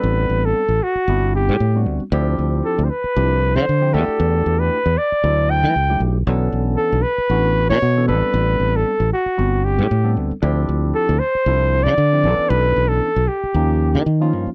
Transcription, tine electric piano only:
\new Staff \with { instrumentName = "Tine electric piano" } { \time 4/4 \key a \dorian \tempo 4 = 115 <g b c' d' a'>4 r4 <g b c' d' e'>4 r16 <g b c' d' fis'>8 r16 | <f c' d' e' g'>4. r8 <f c' d' e' g'>4 r16 <f c' d' e' g'>16 <a d' e' fis' g'>8~ | <a d' e' fis' g'>4 r4 <fis a d' e' a'>4 r16 <fis a d' e' g'>8 r16 | <e b cis' d' a'>4. r8 <e b cis' d' fis'>4 r16 <e b cis' d' a'>16 <g b c' d' a'>8~ |
<g b c' d' a'>4 r4 <g b c' d' fis'>4 r16 <g b c' d' a'>8 r16 | <f c' d' e' g'>4. r8 <f c' d' e' a'>4 r16 <f c' d' e' g'>16 <e b cis' d' a'>8~ | <e b cis' d' a'>4 r4 <eis ais cis' dis' g'>4 r16 <eis ais cis' dis' eis'>8 r16 | }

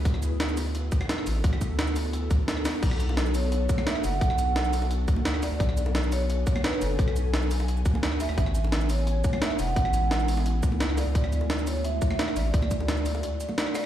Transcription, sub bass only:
\new Staff \with { instrumentName = "Sub bass" } { \clef bass \time 4/4 \key b \dorian \tempo 4 = 173 d,2~ d,8 r4 a,,8 | d,2~ d,8 d,8 r4 | b,,2~ b,,8 r4 fis,,8 | b,,2~ b,,8 d,4~ d,16 d,16 |
b,,2~ b,,8 r4 fis,,8 | b,,2~ b,,8 d,4~ d,16 d,16 | a,,2~ a,,8 r4 e,,8 | a,,2~ a,,8 cis,4~ cis,16 cis,16 |
d,2~ d,8 r4 a,,8 | d,2 r2 | }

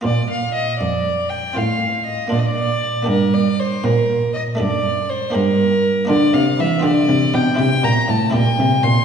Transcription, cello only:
\new Staff \with { instrumentName = "Cello" } { \clef bass \time 6/8 \key bes \major \tempo 4. = 79 bes,4. f,4. | a,4. bes,4. | g,4. bes,4. | fis,4. g,4. |
\key c \mixolydian d8 c8 e8 d8 c8 b,8 | c8 bes,8 a,8 bes,8 c8 bes,8 | }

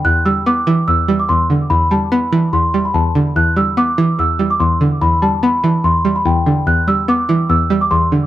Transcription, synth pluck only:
\new Staff \with { instrumentName = "Synth pluck" } { \clef bass \time 4/4 \key e \minor \tempo 4 = 145 e,8 g8 b8 e8 e,8 g8 e,8 d8 | e,8 g8 b8 e8 e,8 g8 e,8 d8 | e,8 g8 b8 e8 e,8 g8 e,8 d8 | e,8 g8 b8 e8 e,8 g8 e,8 d8 |
e,8 g8 b8 e8 e,8 g8 e,8 d8 | }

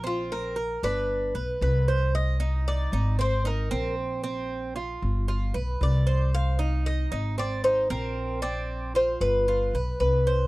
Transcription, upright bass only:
\new Staff \with { instrumentName = "Upright bass" } { \clef bass \time 4/4 \key c \minor \tempo 4 = 114 bes,,4. g,,4 b,,8 c,4~ | c,4. aes,,4. bes,,4~ | bes,,4. g,,4 b,,8 c,4~ | c,4. aes,,4. bes,,4~ |
bes,,4. g,,4 b,,8 c,4 | }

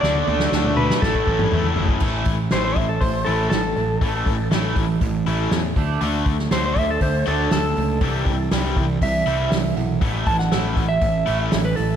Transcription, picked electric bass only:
\new Staff \with { instrumentName = "Picked electric bass" } { \clef bass \time 4/4 \key d \lydian \tempo 4 = 120 d,8 d,8 d,4 a,,8 a,,8 e,8 fis,,8 | a,,8 a,,8 a,,8 a,,8 a,,8 a,,8 a,,8 a,,8 | a,,8 a,,8 a,,8 a,,8 a,,8 a,,8 e,8 d,8 | d,8 d,8 d,8 d,8 d,8 d,8 d,8 cis,8 |
c,8 c,8 c,8 c,8 c,8 c,8 c,8 b,,8 | a,,8 a,,8 a,,8 a,,8 a,,8 a,,8 a,,8 a,,8 | }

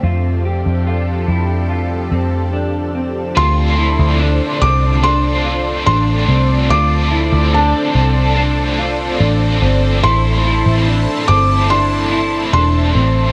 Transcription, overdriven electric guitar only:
\new Staff \with { instrumentName = "Overdriven electric guitar" } { \time 4/4 \key d \minor \tempo 4 = 72 r1 | <d a c' f' a'>2 <a c' f' a'>4 <a c' f' a'>4 | <d a c' f' a'>4. <c' f' a'>8 <a c' f' a'>4 <a c' f' a'>4 | <a, e a c' e' a'>4. <a c' e' a'>8 <a c' e' a'>4 <a c' e' a'>4 | }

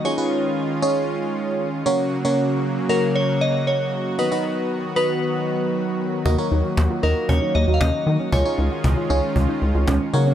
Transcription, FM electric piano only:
\new Staff \with { instrumentName = "FM electric piano" } { \time 4/4 \key des \mixolydian \tempo 4 = 116 <des' ees' f' aes' des''>16 <des' ees' f' aes' ces''>4 r16 <des' ees' f' aes' des''>4.~ <des' ees' f' aes' des''>16 r16 <des bes des' ges' bes' des''>8 | r16 <des bes des' ges' bes' des''>4 r16 <des bes des' ges' bes' des''>4.~ <des bes des' ges' bes' des''>16 r8. | <b dis' fis' b' dis''>16 <b dis' fis' b' dis''>4 r16 <b dis' fis' b' dis''>4.~ <b dis' fis' b' dis''>16 r8. | <bes ees' ges' bes' ees''>16 <bes ees' ges' bes' des''>4 r16 <bes ees' ges' bes' ees''>4.~ <bes ees' ges' bes' ees''>16 r8. |
<des' ees' f' aes' des''>16 <des' ees' f' aes' des''>4 r16 <des' ees' f' aes' des''>4.~ <des' ees' f' aes' des''>16 r16 <bes des' ges' bes' des''>8 | }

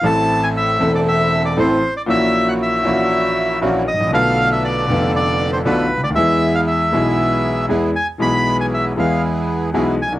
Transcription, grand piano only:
\new Staff \with { instrumentName = "Grand piano" } { \clef bass \time 4/4 \key a \minor \tempo 4 = 118 <a,, a, e a c' a'>4. <e,, e, e a c' a'>4. <a,, a, e a c' a'>8 r8 | <ais,, ais, e ais cis' fis'>4. <ais,, ais, e ais cis' fis'>4. <ais,, ais, e ais cis' fis'>8 r32 gis,,32 a,,32 ais,,32 | <b,, b, d a b f'>4. <f,, f, d a b f'>4. <b,, b, d a b f'>8 r32 cis,32 d,32 dis,32 | <e, e gis b gis'>4. <b,, b, e gis b gis'>4. <e, e gis b gis'>8 r8 |
<b,, b, e gis b gis'>4. <e, e gis b gis'>4. <b,, b, e gis b gis'>8 r32 b,,32 c,32 r32 | }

